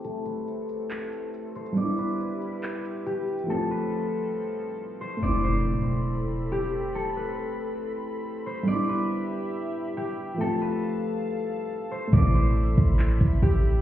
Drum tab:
HH |x-----------x-----------x-----------x-----------x-----------x-----------x-----------x-----x-----|x-----------x-----------x-----------x-----------x-----------x-----------x-----------x-----x-----|------------------------------------------------------------------------------------------------|------------------------------------------------------------------------------------------------|
CP |------------------------------------------------x-----------------------------------------------|------------------------------------------------x-----------------------------------------------|------------------------------------------------------------------------------------------------|------------------------------------------------------------------------------------------------|
BD |------------------------------------------------------------------------------------------------|------------------------------------------------------------------------------------------------|------------------------------------------------------------------------------------------------|------------------------------------------------------------------------------------------------|

HH |------------------------------------------------------------------------------------------------|------------------------------------------------------------------------------------------------|------------------------------------------------------------------------------------------------|x-----------x-----------x---x---x---x--x--x--x--x-----------x-----------x-----------x-----------|
CP |------------------------------------------------------------------------------------------------|------------------------------------------------------------------------------------------------|------------------------------------------------------------------------------------------------|------------------------------------------------x-----------------------------------------------|
BD |------------------------------------------------------------------------------------------------|------------------------------------------------------------------------------------------------|------------------------------------------------------------------------------------------------|o-----------------------------------o-----------------------o-----------o-----------------------|